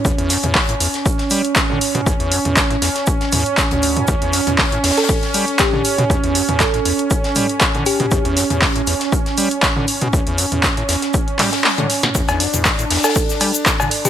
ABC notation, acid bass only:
X:1
M:4/4
L:1/16
Q:"Swing 16ths" 1/4=119
K:Edor
V:1 name="Acid bass" clef=bass
E,, E,, F,, E,, G,, A,, E,, z3 G, z2 D, z B,, | E,, E,, F,, E,, G,, A,, E,, z3 E,, z2 D,,2 G,, | E,, E,, F,, E,, G,, A,, E,, z3 G, z2 D, z B,, | E,, E,, F,, E,, G,, A,, E,, z3 G, z2 D, z B,, |
E,, E,, F,, E,, G,, A,, E,, z3 G, z2 D, z B,, | E,, E,, F,, E,, G,, A,, E,, z3 G, z2 D, z B,, | E,, E,, F,, E,, G,, A,, E,, z3 G, z2 D, z B,, |]